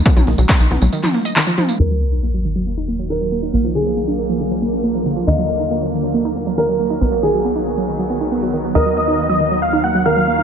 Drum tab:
HH |x-oxxooxx-oxx-ox|----------------|----------------|----------------|
TB |xx-xxx-xxx-xxx-x|----------------|----------------|-------x---xx--x|
CP |----x----x--x---|----------------|----------------|----------------|
T2 |-o----o--o----o-|----------------|----------------|----------------|
BD |o---o-----------|----------------|----------------|----------------|

HH |----------------|----------------|
TB |-x-xxx-xx--xx--x|-------x-------x|
CP |----------------|----------------|
T2 |----------------|----------------|
BD |----------------|----------------|